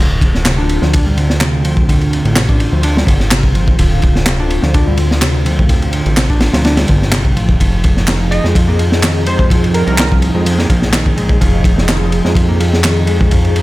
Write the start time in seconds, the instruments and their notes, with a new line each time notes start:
0.00 analog synth bass D1, picked electric bass D3, analog synth pad D3 C4 F4
0.21 kick, ride
0.35 snare
0.45 picked electric bass C3, snare, clap, ride
0.58 picked electric bass D4
0.69 ride
0.82 analog synth bass D2, picked electric bass F3, snare
0.93 picked electric bass D4, kick, ride
1.06 picked electric bass G3
1.17 picked electric bass D3, ride
1.30 snare
1.41 picked electric bass C3, snare, clap, ride
1.65 picked electric bass F3, ride
1.77 kick
1.89 picked electric bass D3, kick, ride
2.01 ride
2.13 ride
2.25 analog synth bass A1, ride
2.36 picked electric bass C3, snare, clap, ride
2.49 picked electric bass D4, kick
2.60 ride
2.73 analog synth bass D2, picked electric bass F3
2.83 picked electric bass D4, ride
2.96 picked electric bass G3, snare
3.07 analog synth bass G1, picked electric bass D3, kick, ride
3.20 snare
3.31 picked electric bass C3, snare, clap, ride
3.43 kick
3.55 picked electric bass F3, ride
3.68 kick
3.79 analog synth bass D1, picked electric bass D3, kick, ride
4.02 kick, ride
4.15 snare
4.26 picked electric bass C3, snare, clap, ride
4.40 picked electric bass D4
4.50 ride
4.62 analog synth bass D2, picked electric bass F3, snare
4.74 picked electric bass D4, kick, ride
4.87 picked electric bass G3
4.97 picked electric bass D3, ride
5.11 snare
5.22 picked electric bass C3, snare, clap, ride
5.46 picked electric bass F3, ride
5.59 kick
5.69 picked electric bass D3, kick, ride
5.82 ride
5.93 ride
6.06 analog synth bass A1, ride
6.17 picked electric bass C3, snare, clap, ride
6.30 picked electric bass D4, kick
6.41 snare, ride
6.53 analog synth bass D2, picked electric bass F3, snare, ride
6.65 picked electric bass D4, snare, ride
6.77 picked electric bass G3, snare, ride
6.88 analog synth bass G1, picked electric bass D3, kick, ride
7.02 snare
7.12 picked electric bass C3, snare, clap, ride
7.25 kick
7.36 analog synth bass A1, picked electric bass F3, ride
7.49 analog synth bass D1, kick
7.60 analog synth bass F1, picked electric bass F3, analog synth pad F3 D#4 G#4, kick, ride
7.84 kick, ride
7.97 snare
8.07 picked electric bass D#3, snare, clap, ride
8.20 picked electric bass F3
8.31 synth pluck D#5, ride
8.44 analog synth bass F2, picked electric bass G#3, snare
8.55 picked electric bass F3, kick, ride
8.68 picked electric bass A#3
8.79 picked electric bass F3, ride
8.92 snare
9.02 picked electric bass D#3, snare, clap, ride
9.26 picked electric bass G#3, synth pluck C5, ride
9.39 synth pluck C5, kick
9.50 picked electric bass F3, kick, ride
9.64 ride
9.74 synth pluck A#4, ride
9.87 analog synth bass C2, synth pluck A#4, ride
9.98 picked electric bass D#3, synth pluck A#4, snare, clap, ride
10.11 picked electric bass F3, kick
10.22 ride
10.35 analog synth bass F2, picked electric bass G#3
10.46 picked electric bass F3, ride
10.58 picked electric bass A#3, snare
10.70 analog synth bass A#1, picked electric bass F3, kick, ride
10.82 snare
10.93 picked electric bass D#3, snare, clap, ride
11.06 kick
11.17 picked electric bass G#3, ride
11.29 kick
11.41 analog synth bass F1, picked electric bass F3, kick, ride
11.64 kick, ride
11.78 snare
11.88 picked electric bass D#3, snare, clap, ride
12.01 picked electric bass F3
12.12 ride
12.25 analog synth bass F2, picked electric bass G#3, snare
12.35 picked electric bass F3, kick, ride
12.49 picked electric bass A#3
12.60 picked electric bass F3, ride
12.73 snare
12.84 picked electric bass D#3, snare, clap, ride
13.07 picked electric bass G#3, ride
13.21 kick
13.31 picked electric bass F3, kick, ride
13.45 ride
13.56 ride